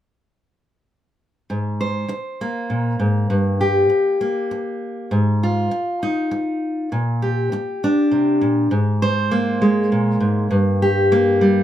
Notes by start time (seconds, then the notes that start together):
1.50 G#2
1.81 C5
2.08 muted steel-string acoustic guitar stroke
2.41 A#3
2.70 A#2
2.99 G#2
3.30 G2
3.61 G4
3.90 muted steel-string acoustic guitar stroke
4.21 A#3
4.51 muted steel-string acoustic guitar stroke
5.11 G#2
5.43 F4
5.71 muted steel-string acoustic guitar stroke
6.03 D#4
6.31 muted steel-string acoustic guitar stroke
6.92 A#2
7.22 G4
7.52 muted steel-string acoustic guitar stroke
7.84 D4
8.11 C3
8.41 A#2
8.71 G#2
9.02 C5
9.31 A#3
9.62 G#3
9.92 A#2
10.20 G#2
10.51 G2
10.82 G4
11.12 A#3
11.41 G3